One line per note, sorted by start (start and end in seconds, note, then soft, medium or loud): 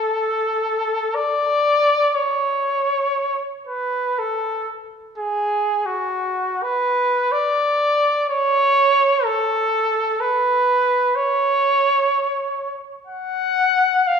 0.00 1.16 A4 medium
1.15 2.16 D5 medium
2.15 3.50 C#5 medium
3.67 4.20 B4 medium
4.19 4.69 A4 medium
5.18 5.87 G#4 medium
5.86 6.64 F#4 medium
6.63 7.34 B4 medium
7.32 8.29 D5 medium
8.30 9.26 C#5 medium
9.25 10.22 A4 medium
10.20 11.17 B4 medium
11.16 12.80 C#5 medium
13.07 14.09 F#5 medium
14.07 14.20 F5 medium